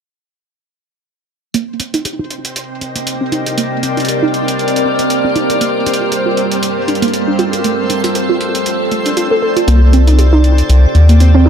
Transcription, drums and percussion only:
1.54 closed hi-hat medium
1.80 closed hi-hat medium
1.94 closed hi-hat medium
2.05 closed hi-hat medium
2.31 closed hi-hat soft
2.45 closed hi-hat medium
2.56 closed hi-hat medium
2.81 closed hi-hat soft
2.96 closed hi-hat soft
3.07 closed hi-hat medium
3.32 closed hi-hat soft
3.46 closed hi-hat medium
3.58 closed hi-hat medium
3.83 closed hi-hat medium
3.97 closed hi-hat soft
4.00 closed hi-hat soft
4.05 closed hi-hat soft
4.08 closed hi-hat medium
4.34 closed hi-hat soft
4.48 closed hi-hat medium
4.59 closed hi-hat soft
4.68 closed hi-hat soft
4.76 closed hi-hat medium
4.99 closed hi-hat medium
5.10 closed hi-hat medium
5.36 closed hi-hat soft
5.50 closed hi-hat medium
5.61 closed hi-hat medium
5.86 closed hi-hat medium
5.94 closed hi-hat soft
6.12 closed hi-hat medium
6.37 closed hi-hat soft
6.52 closed hi-hat medium
6.63 closed hi-hat medium
6.88 closed hi-hat soft
6.95 closed hi-hat soft
7.02 closed hi-hat medium
7.08 closed hi-hat soft
7.14 closed hi-hat medium
7.39 closed hi-hat soft
7.53 closed hi-hat medium
7.64 closed hi-hat medium
7.90 closed hi-hat medium
8.04 closed hi-hat medium
8.15 closed hi-hat medium
8.41 closed hi-hat soft
8.55 closed hi-hat medium
8.66 closed hi-hat medium
8.91 closed hi-hat soft
9.06 closed hi-hat soft
9.17 closed hi-hat medium
9.57 closed hi-hat soft
9.68 closed hi-hat medium
9.93 closed hi-hat medium
10.07 closed hi-hat soft
10.19 closed hi-hat medium
10.44 closed hi-hat soft
10.58 closed hi-hat soft
10.69 closed hi-hat medium
10.95 closed hi-hat soft
11.09 closed hi-hat soft
11.20 closed hi-hat medium

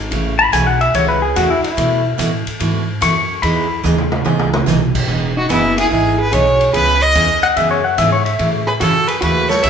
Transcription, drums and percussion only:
0.12 ride medium
0.53 hi-hat pedal medium
0.53 ride medium
0.81 ride soft
0.95 ride medium
1.36 hi-hat pedal soft
1.36 ride medium
1.64 ride medium
1.78 ride medium
2.19 hi-hat pedal medium
2.19 ride medium
2.47 ride medium
2.60 ride medium
3.02 hi-hat pedal medium
3.02 ride medium
3.43 ride medium
3.84 hi-hat pedal medium
3.84 mid tom soft
3.98 mid tom medium
4.12 mid tom medium
4.26 mid tom medium
4.39 mid tom medium
4.53 mid tom loud
4.67 snare medium
4.67 hi-hat pedal medium
4.95 kick medium
4.95 crash medium
5.50 hi-hat pedal medium
5.50 ride medium
5.78 ride medium
6.33 hi-hat pedal medium
6.33 ride medium
6.61 ride soft
6.74 ride medium
7.15 hi-hat pedal soft
7.15 ride medium
7.43 ride soft
7.57 ride medium
7.98 hi-hat pedal medium
7.98 ride medium
8.26 ride soft
8.39 ride medium
8.81 hi-hat pedal soft
8.81 ride medium
9.08 ride medium
9.22 ride medium
9.50 snare medium
9.63 hi-hat pedal medium
9.63 ride medium

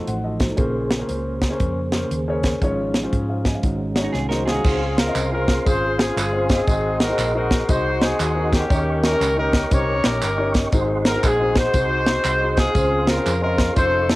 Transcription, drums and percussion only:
0.07 closed hi-hat medium
0.40 kick loud
0.40 snare loud
0.40 closed hi-hat medium
0.57 kick loud
0.57 closed hi-hat medium
0.91 snare loud
0.91 closed hi-hat medium
1.09 closed hi-hat medium
1.42 kick medium
1.42 snare loud
1.42 closed hi-hat medium
1.60 kick loud
1.60 closed hi-hat medium
1.92 snare loud
1.92 closed hi-hat medium
2.11 closed hi-hat medium
2.43 kick medium
2.43 snare loud
2.43 closed hi-hat medium
2.62 kick loud
2.62 closed hi-hat medium
2.94 snare loud
2.94 closed hi-hat medium
3.13 kick medium
3.13 closed hi-hat medium
3.45 kick medium
3.45 snare loud
3.45 closed hi-hat medium
3.63 kick loud
3.63 closed hi-hat medium
3.96 snare loud
3.96 closed hi-hat medium
4.14 snare medium
4.31 snare medium
4.48 snare medium
4.64 kick loud
4.64 crash loud
4.64 tambourine medium
4.98 snare loud
4.98 closed hi-hat medium
4.98 tambourine medium
5.16 clap medium
5.16 closed hi-hat medium
5.16 tambourine medium
5.48 kick medium
5.48 snare loud
5.48 closed hi-hat medium
5.48 tambourine soft
5.66 kick loud
5.66 closed hi-hat medium
5.66 tambourine medium
5.99 snare loud
5.99 closed hi-hat medium
5.99 tambourine medium
6.18 clap loud
6.18 closed hi-hat medium
6.18 tambourine loud
6.49 kick loud
6.49 snare loud
6.49 closed hi-hat medium
6.49 tambourine medium
6.67 kick loud
6.67 closed hi-hat medium
6.67 tambourine medium
7.00 snare loud
7.00 closed hi-hat medium
7.00 tambourine medium
7.18 clap medium
7.18 closed hi-hat medium
7.18 tambourine medium
7.51 kick medium
7.51 snare loud
7.51 closed hi-hat medium
7.51 tambourine soft
7.69 kick loud
7.69 closed hi-hat loud
7.69 tambourine medium
8.01 snare loud
8.01 closed hi-hat medium
8.01 tambourine medium
8.20 clap loud
8.20 closed hi-hat medium
8.20 tambourine loud
8.53 kick loud
8.53 snare loud
8.53 closed hi-hat medium
8.53 tambourine medium
8.70 kick loud
8.70 closed hi-hat medium
8.70 tambourine medium
9.04 snare loud
9.04 closed hi-hat medium
9.04 tambourine medium
9.22 clap medium
9.22 closed hi-hat medium
9.22 tambourine medium
9.53 kick medium
9.53 snare loud
9.53 closed hi-hat medium
9.53 tambourine medium
9.71 kick loud
9.71 closed hi-hat loud
9.71 tambourine medium
10.04 snare loud
10.04 closed hi-hat medium
10.04 tambourine medium
10.22 clap loud
10.22 closed hi-hat medium
10.22 tambourine loud
10.54 kick loud
10.54 snare loud
10.54 closed hi-hat medium
10.54 tambourine medium
10.72 kick loud
10.72 closed hi-hat medium
10.72 tambourine medium
11.05 snare loud
11.05 closed hi-hat medium
11.05 tambourine medium
11.23 kick medium
11.23 clap medium
11.23 closed hi-hat medium
11.23 tambourine medium
11.56 kick medium
11.56 snare loud
11.56 closed hi-hat medium
11.56 tambourine soft
11.74 kick loud
11.74 closed hi-hat medium
11.74 tambourine medium
12.06 snare loud
12.06 closed hi-hat medium
12.06 tambourine medium
12.25 clap loud
12.25 closed hi-hat medium
12.25 tambourine medium
12.57 kick medium
12.57 snare loud
12.57 closed hi-hat medium
12.57 tambourine medium
12.75 kick loud
12.75 closed hi-hat medium
12.75 tambourine medium
13.07 snare loud
13.07 closed hi-hat medium
13.07 tambourine medium
13.26 clap medium
13.26 closed hi-hat medium
13.26 tambourine medium
13.58 kick medium
13.58 snare loud
13.58 closed hi-hat medium
13.58 tambourine medium
13.76 kick loud
13.76 closed hi-hat medium
13.76 tambourine medium
14.09 snare loud
14.09 closed hi-hat medium
14.09 tambourine medium

